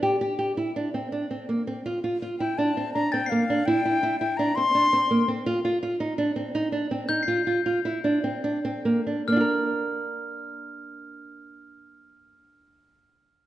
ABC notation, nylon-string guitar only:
X:1
M:5/4
L:1/8
Q:1/4=164
K:Bblyd
V:1 name="Nylon-string guitar"
G G G E D C D C B, C | F F F E D C D C B, D | E E E E D C D C B, C | F F F _E D C E D C E |
F F F E D C D C B, D | [B,DFB]8- [B,DFB]2- | [B,DFB]8- [B,DFB]2 |]